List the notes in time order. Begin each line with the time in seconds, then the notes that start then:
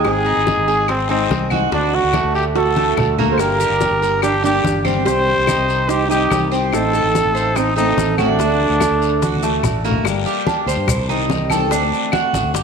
Already playing: G#3
0.04 G#1 D#3 G#3 C4 D#4 G#4, high bongo, high conga, long guiro, claves
0.26 D#4, high conga
0.37 G#1
0.47 high bongo, high conga, short guiro
0.57 G#1
0.68 G#4, short guiro
0.88 C4, muted steel-string acoustic guitar stroke, high bongo, high conga, long guiro, claves
1.09 G#3 C4 D#4 G#4, high conga
1.30 C2 G#3 C4 D#4 G#4, high bongo, low bongo, high conga, short guiro
1.50 G#3 C4 D#4 F#4 G#4, high conga, short guiro, claves
1.72 D2 D3 A3 D4 F#4, high bongo, high conga, long guiro
1.93 F#4, high bongo, high conga
2.03 D2
2.13 A3, high bongo, high conga, short guiro, claves
2.24 D2
2.35 G4, high bongo, short guiro
2.56 F#4 A4, muted steel-string acoustic guitar stroke, high bongo, high conga, long guiro
2.76 A3 D4 F#4, high bongo, high conga
2.97 D2 D3 A3 D4 F#4, high bongo, low bongo, low conga, short guiro, claves
3.19 A3 A#3 D4 F#4, low conga, short guiro
3.32 A4 C5
3.38 G1 D3 G3 A#3 D4 G4 A#4, high bongo, high conga, long guiro, claves, maracas
3.60 G4, high conga, maracas
3.70 G1
3.81 high bongo, high conga, short guiro, maracas
3.91 G1
4.02 A#4, short guiro, maracas
4.22 D4 G4, muted steel-string acoustic guitar stroke, high bongo, high conga, long guiro, claves, maracas
4.43 G3 A#3 D4 G4, high conga, maracas
4.64 G1 G3 A#3 D4 G4, high bongo, low bongo, high conga, short guiro, maracas
4.85 G3 A#3 C4 D4 G4, high conga, short guiro, claves, maracas
5.05 C2 C3 D#3 G3 C4 G4 C5, high bongo, high conga, long guiro, maracas
5.09 G4
5.27 high bongo, high conga
5.38 C2
5.47 D#4, high bongo, high conga, short guiro, claves, maracas
5.58 C2
5.68 high bongo, short guiro, maracas
5.89 D#4 G4 C5, muted steel-string acoustic guitar stroke, high bongo, high conga, long guiro, maracas
6.09 D#3 G3 C4 D#4 G4, high bongo, high conga, maracas
6.30 C2 D#3 G3 C4 G4, high bongo, low bongo, high conga, short guiro, claves, maracas
6.52 D#3 G3 C4 G4, high conga, short guiro, maracas
6.72 A1 D#3 A3 C4 D#4 A4, high bongo, high conga, long guiro, claves, maracas
6.93 A4, high conga, maracas
7.04 A1
7.15 high bongo, high conga, short guiro, maracas
7.25 A1
7.35 C5, short guiro, maracas
7.56 C4 D#4, muted steel-string acoustic guitar stroke, high bongo, high conga, long guiro, claves, maracas
7.76 A3 C4 D#4 A4, high conga, maracas
7.97 A1 D#3 A3, high bongo, low bongo, high conga, short guiro, maracas
8.18 A3 C4 D4 F#4, high conga, short guiro, claves, maracas
8.39 D2 D3 A3 D4 F#4, high bongo, high conga, long guiro, maracas
8.61 high bongo, high conga
8.70 D2
8.80 A3, high bongo, high conga, short guiro, claves, maracas
8.91 D2
9.02 high bongo, short guiro, maracas
9.22 F#4, muted steel-string acoustic guitar stroke, high bongo, high conga, long guiro, maracas
9.37 high conga
9.42 A3 D4 F#4, high bongo, maracas
9.63 A1 D3 A3 D4 F#4, high bongo, low bongo, low conga, short guiro, claves, maracas
9.84 A3 A#3 D4 F#4, short guiro, maracas
9.91 low conga
10.04 G1 D3 G3 A#3 D4, high bongo, high conga, long guiro, claves, maracas
10.08 G4
10.26 G4, high conga, maracas
10.47 D4, high bongo, high conga, short guiro, maracas
10.66 D2 C5, high bongo, high conga, short guiro, maracas
10.76 G2
10.87 C2, muted steel-string acoustic guitar stroke, high bongo, high conga, low conga, long guiro, claves, maracas
11.08 D#3 G3 C4 D#4 G4, high bongo, high conga, maracas
11.30 D#3 G3 C4 G4, high bongo, low bongo, high conga, short guiro, maracas
11.50 D#3 G3 C4 G4 A4, high bongo, high conga, short guiro, claves, maracas
11.71 D2 D3 A3 C4 D4 F#4, high bongo, high conga, long guiro, maracas
11.92 high conga, maracas
12.12 F#4, high bongo, high conga, short guiro, claves, maracas
12.33 A1, high bongo, high conga, short guiro, maracas
12.43 D2
12.54 G1 G4, muted steel-string acoustic guitar stroke, high bongo, high conga, long guiro, maracas